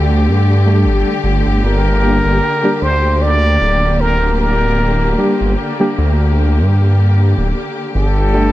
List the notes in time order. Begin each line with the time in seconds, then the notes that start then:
Already playing: D2 D3 A3 G4
0.27 G2
0.66 G3 A3 D4 G4
0.84 G1
1.23 G1
1.46 G1
1.63 G1 A#3 A#4
2.02 G3 A#3 D4 G4
2.25 G1
2.64 G3 A#3 D4 G4
2.82 D2 C5
3.22 D5
3.61 D1
4.01 A#4
4.41 A#4
5.18 G3 A#3 D4 G4
5.41 G1
5.80 G3 A#3 D4 G4
5.98 D2
6.59 G2
7.38 D1
7.94 G1 D3 G3 G4 A4
8.34 G3 A3 D4 G4